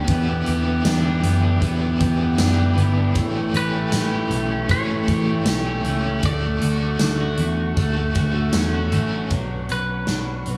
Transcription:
Already playing: clean electric guitar D4 G4
0.07 picked electric bass E2, overdriven electric guitar D3 E3, clean electric guitar B3, tonewheel organ B4 E5 G5 D6, kick, closed hi-hat
0.12 overdriven electric guitar B3 E4
0.28 clean electric guitar B3
0.46 picked electric bass E2, clean electric guitar G4, closed hi-hat
0.67 clean electric guitar B3
0.85 picked electric bass E2, clean electric guitar D4, snare, closed hi-hat, tambourine
1.05 clean electric guitar G4
1.23 picked electric bass F#2, clean electric guitar B3, closed hi-hat
1.44 clean electric guitar D4
1.60 picked electric bass E2, overdriven electric guitar D3 E3, clean electric guitar B3, kick, closed hi-hat
1.65 overdriven electric guitar B3 E4
1.81 clean electric guitar B3
2.00 picked electric bass E2, clean electric guitar G4, kick, closed hi-hat
2.21 clean electric guitar B3
2.38 picked electric bass F#2, clean electric guitar D4, snare, closed hi-hat, tambourine
2.58 clean electric guitar G4
2.77 picked electric bass G1, clean electric guitar B3, closed hi-hat
2.97 clean electric guitar D4
3.14 picked electric bass A1, overdriven electric guitar A2 A3 C#4, clean electric guitar E3, tonewheel organ A4 E5 C#6, kick, closed hi-hat
3.19 overdriven electric guitar E4 G4
3.35 clean electric guitar A3
3.54 picked electric bass A1, clean electric guitar G4 B4, closed hi-hat
3.74 clean electric guitar A3
3.92 picked electric bass A1, clean electric guitar C#4, snare, closed hi-hat, tambourine
4.12 clean electric guitar G4
4.30 picked electric bass B1, clean electric guitar A3, closed hi-hat
4.51 clean electric guitar C#4
4.69 picked electric bass A1, overdriven electric guitar A2 A3 C#4 E4 G4, clean electric guitar E3 C#5, kick, closed hi-hat
4.90 clean electric guitar A3
5.08 picked electric bass A1, clean electric guitar G4, kick, closed hi-hat
5.29 clean electric guitar A3
5.45 picked electric bass B1, clean electric guitar C#4, snare, closed hi-hat, tambourine
5.67 clean electric guitar G4
5.84 picked electric bass C#2, clean electric guitar A3, overdriven electric guitar E4 G4, closed hi-hat
5.89 overdriven electric guitar C#4
6.05 clean electric guitar C#4
6.23 picked electric bass D2, overdriven electric guitar D3, clean electric guitar A3 D5, tonewheel organ F#5 C#6, kick, closed hi-hat
6.27 overdriven electric guitar F#4 A4
6.45 clean electric guitar A3
6.61 picked electric bass D2, clean electric guitar F#4, closed hi-hat
6.82 clean electric guitar A3
6.99 picked electric bass D2, snare, closed hi-hat, tambourine
7.21 clean electric guitar F#4
7.37 picked electric bass E2, clean electric guitar A3, closed hi-hat
7.77 picked electric bass D2, overdriven electric guitar D3 F#4 A4, clean electric guitar A3, kick, closed hi-hat
7.97 clean electric guitar A3
8.15 picked electric bass D2, clean electric guitar F#4, kick, closed hi-hat
8.35 clean electric guitar A3
8.52 picked electric bass E2, clean electric guitar C#4, snare, closed hi-hat, tambourine
8.74 clean electric guitar F#4
8.92 picked electric bass A1, clean electric guitar A3, overdriven electric guitar C#4 F#4 A4, closed hi-hat
9.12 clean electric guitar C#4
9.30 picked electric bass B1, clean electric guitar F#3 D4, tonewheel organ B4 C#5 F#5 C#6, kick, closed hi-hat
9.69 picked electric bass B1, clean electric guitar C#4 B4, closed hi-hat
10.07 picked electric bass B1, clean electric guitar D4, snare, closed hi-hat
10.46 picked electric bass B1, clean electric guitar F#3, closed hi-hat

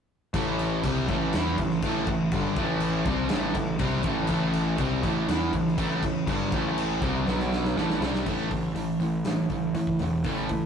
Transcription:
0.34 picked electric bass A1, overdriven electric guitar A2 E3 A3, kick, crash
0.59 crash
0.83 picked electric bass C2, overdriven electric guitar C3 G3 C4, kick, crash
1.08 picked electric bass A1, overdriven electric guitar A2 E3 A3, kick, crash
1.33 picked electric bass E2, overdriven electric guitar E3 B3 E4, snare, crash
1.58 picked electric bass A1, overdriven electric guitar A2 E3, kick, crash
1.71 snare
1.82 picked electric bass A1, overdriven electric guitar A2 E3 A3, kick, crash
2.07 picked electric bass A1, overdriven electric guitar A2 E3, kick, crash
2.32 picked electric bass G1, overdriven electric guitar G2 D3 G3, kick, crash
2.56 picked electric bass A1, overdriven electric guitar A2 E3 A3, kick, crash
2.80 crash
3.05 picked electric bass C2, overdriven electric guitar C3 G3 C4, kick, crash
3.29 picked electric bass A1, overdriven electric guitar A2 E3 A3, snare, crash
3.54 picked electric bass A1, overdriven electric guitar A2 E3, kick, crash
3.79 picked electric bass C2, overdriven electric guitar C3 G3 C4, kick, crash
4.03 picked electric bass A1, overdriven electric guitar A2 E3 A3, kick, crash
4.27 picked electric bass A1, overdriven electric guitar A2 E3 A3, kick, crash
4.53 crash
4.78 picked electric bass C2, overdriven electric guitar C3 G3 C4, kick, crash
5.03 picked electric bass A1, overdriven electric guitar A2 E3 A3, kick, crash
5.28 picked electric bass E2, overdriven electric guitar E3 B3 E4, snare, crash
5.53 picked electric bass A1, overdriven electric guitar A2 E3, kick, crash
5.67 snare
5.77 picked electric bass A1, overdriven electric guitar A2 E3 A3, kick, crash
6.03 picked electric bass A1, overdriven electric guitar A2 E3, kick, crash
6.26 picked electric bass G1, overdriven electric guitar G2 D3 G3, kick, crash
6.52 picked electric bass A1, overdriven electric guitar A2 E3 A3, kick, crash
6.78 crash
7.02 picked electric bass C2, overdriven electric guitar C3 G3 C4, kick, crash
7.26 picked electric bass B1, overdriven electric guitar B2 F#3 B3, snare
7.40 snare
7.53 snare
7.65 snare
7.76 picked electric bass A1, overdriven electric guitar A2 E3 A3, snare
7.90 snare
8.01 picked electric bass C2, overdriven electric guitar C3 G3 C4, snare
8.15 snare
8.26 picked electric bass A1, overdriven electric guitar A2 E3 A3, kick, crash
8.51 picked electric bass A1, overdriven electric guitar A2 E3, kick, open hi-hat
8.74 picked electric bass A1, overdriven electric guitar A2 E3, open hi-hat
9.00 picked electric bass A1, overdriven electric guitar A2 E3, open hi-hat
9.25 picked electric bass A1, overdriven electric guitar A2 E3, snare, open hi-hat
9.50 picked electric bass A1, overdriven electric guitar A2 E3, kick, open hi-hat
9.74 picked electric bass A2, overdriven electric guitar A2 E3, open hi-hat
9.87 kick
9.99 picked electric bass E1, overdriven electric guitar A2 E3, snare, open hi-hat
10.24 picked electric bass A1, overdriven electric guitar A2 E3 A3, kick, open hi-hat
10.49 overdriven electric guitar A2 E3, picked electric bass A2, kick, open hi-hat

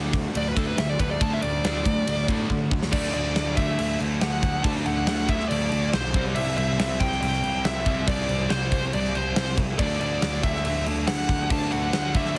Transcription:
Already playing: picked electric bass D2, overdriven electric guitar D3 A3 D4
0.13 overdriven electric guitar D3 A3, kick, ride
0.34 picked electric bass D2, overdriven electric guitar D3 A3, lead electric guitar D5, ride
0.48 lead electric guitar B4
0.56 picked electric bass D2, overdriven electric guitar D3 A3 D4, lead electric guitar A4, kick, ride
0.67 lead electric guitar B4
0.77 picked electric bass D2, overdriven electric guitar D3 A3, lead electric guitar E5, snare, ride
0.89 lead electric guitar D5
0.99 picked electric bass D2, overdriven electric guitar D3 A3 D4, lead electric guitar B4, kick, ride
1.11 lead electric guitar D5
1.20 picked electric bass D2, overdriven electric guitar D3 A3 D4, lead electric guitar A5, kick, ride
1.34 lead electric guitar E5
1.42 picked electric bass D2, overdriven electric guitar D3 A3, lead electric guitar D5, ride
1.64 picked electric bass D2, overdriven electric guitar D3 A3 D4, snare, ride
1.85 picked electric bass D2, overdriven electric guitar D3 A3, kick, ride
2.07 picked electric bass D2, overdriven electric guitar D3 A3, ride
2.28 picked electric bass A2, overdriven electric guitar D3 A3 D4, kick, ride
2.50 overdriven electric guitar D3 A3, picked electric bass D3, kick
2.70 picked electric bass D2, overdriven electric guitar D3 A3, kick
2.83 snare
2.92 picked electric bass D2, overdriven electric guitar D3 A3 D4, lead electric guitar D5, kick, crash
3.14 picked electric bass D2, lead electric guitar D5, crash
3.36 picked electric bass D2, snare, crash
3.56 picked electric bass D2, overdriven electric guitar D3 A3 D4, lead electric guitar E5, kick, crash
3.79 picked electric bass D2, crash
4.00 picked electric bass D2, crash
4.21 picked electric bass D2, lead electric guitar F#5, snare, crash
4.43 picked electric bass D2, kick, crash
4.63 picked electric bass D2, overdriven electric guitar D3 A3 D4, lead electric guitar A5, kick, crash
4.86 picked electric bass D2, lead electric guitar F#5, crash
5.07 picked electric bass D2, snare, crash
5.28 overdriven electric guitar D3 A3 D4, lead electric guitar E5, kick, crash
5.40 snare
5.48 picked electric bass D2, lead electric guitar D5, crash
5.72 picked electric bass D2, crash
5.93 picked electric bass B1, lead electric guitar C5, snare, crash
6.14 picked electric bass C2, overdriven electric guitar C3 G3 C4, kick, crash
6.35 picked electric bass C2, lead electric guitar E5, crash
6.57 picked electric bass C2, lead electric guitar E5, crash
6.78 picked electric bass C2, overdriven electric guitar C3 G3 C4, snare, crash
7.00 picked electric bass C2, lead electric guitar G5, kick, crash
7.12 snare
7.21 picked electric bass C2, lead electric guitar G5, crash
7.33 snare
7.44 picked electric bass C2, crash
7.65 picked electric bass C2, lead electric guitar E5, snare, crash
7.86 picked electric bass C2, overdriven electric guitar C3 G3 C4, kick, crash
8.08 picked electric bass C2, lead electric guitar D5, kick, crash
8.29 picked electric bass C2, crash
8.50 picked electric bass C2, overdriven electric guitar C3 G3 C4, lead electric guitar C5, snare, crash
8.72 kick, crash
8.93 picked electric bass C2, lead electric guitar D5, crash
9.05 snare
9.15 picked electric bass C2, lead electric guitar C5, crash
9.36 picked electric bass C2, snare, crash
9.58 picked electric bass C2, kick, crash
9.79 picked electric bass D2, overdriven electric guitar D3 A3 D4, lead electric guitar D5, kick, crash
10.00 picked electric bass D2, lead electric guitar D5, crash
10.22 picked electric bass D2, snare, crash
10.43 picked electric bass D2, overdriven electric guitar D3 A3 D4, lead electric guitar E5, kick, crash
10.55 snare
10.65 picked electric bass D2, crash
10.86 picked electric bass D2, crash
11.07 picked electric bass D2, lead electric guitar F#5, snare, crash
11.29 picked electric bass D2, kick, crash
11.50 picked electric bass D2, overdriven electric guitar D3 A3 D4, lead electric guitar A5, kick, crash
11.72 picked electric bass D2, lead electric guitar F#5, crash
11.93 picked electric bass D2, snare, crash
12.14 overdriven electric guitar D3 A3 D4, lead electric guitar E5, kick, crash
12.25 snare

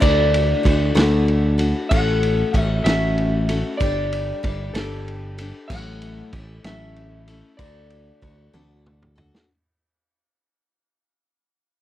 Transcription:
0.00 picked electric bass D2, steel-string acoustic guitar D3 A3 D4 F#4 A4, electric slide guitar D5, kick, ride
0.34 ride
0.63 picked electric bass D2, steel-string acoustic guitar A3 D4 F#4 A4, kick, ride
0.95 picked electric bass D2, steel-string acoustic guitar D3 A3 D4 F#4 A4, electric slide guitar A4, snare, ride
1.28 ride
1.58 steel-string acoustic guitar D4 F#4 A4, ride
1.89 picked electric bass A1, steel-string acoustic guitar A2 E3 A3 C#4 F#4 A4, electric slide guitar F#5, kick, crash
2.23 ride
2.54 picked electric bass A1, steel-string acoustic guitar A3 C#4 F#4 A4, kick, ride
2.59 electric slide guitar E5
2.84 picked electric bass A1, steel-string acoustic guitar A2 E3 A3 C#4 F#4 A4, electric slide guitar E5, snare, ride
3.18 ride
3.49 steel-string acoustic guitar A3 C#4 F#4 A4, ride
3.77 picked electric bass G1, steel-string acoustic guitar G3 D4, electric slide guitar D5, kick, ride
3.82 steel-string acoustic guitar G4 A4
4.12 ride
4.43 picked electric bass G1, steel-string acoustic guitar G3 D4 G4 A4, kick, ride
4.74 picked electric bass G1, steel-string acoustic guitar G3 D4 G4 A4, electric slide guitar A4, snare, ride
5.08 ride
5.38 steel-string acoustic guitar D4 G4 A4, ride
5.68 picked electric bass A1, steel-string acoustic guitar A2 F#3 A3 C#4 A4, electric slide guitar F#5, kick, crash
5.72 steel-string acoustic guitar E4
6.02 ride
6.33 picked electric bass A1, steel-string acoustic guitar A3 C#4 E4 A4, kick, ride
6.64 picked electric bass A1, steel-string acoustic guitar A2 F#3 A3 C#4 E4 A4, electric slide guitar E5, snare, ride
6.96 ride
7.28 steel-string acoustic guitar A3 C#4 E4 A4, ride
7.57 picked electric bass D2, steel-string acoustic guitar D3 A3 D4 F#4 A4, electric slide guitar D5, kick, ride
7.90 ride
8.22 picked electric bass D2, steel-string acoustic guitar A3 D4 F#4 A4, kick, ride
8.53 picked electric bass D2, steel-string acoustic guitar D3 A3 D4 F#4 A4, high tom
8.86 mid tom
9.02 mid tom
9.16 steel-string acoustic guitar D4 F#4 A4, floor tom
9.35 snare

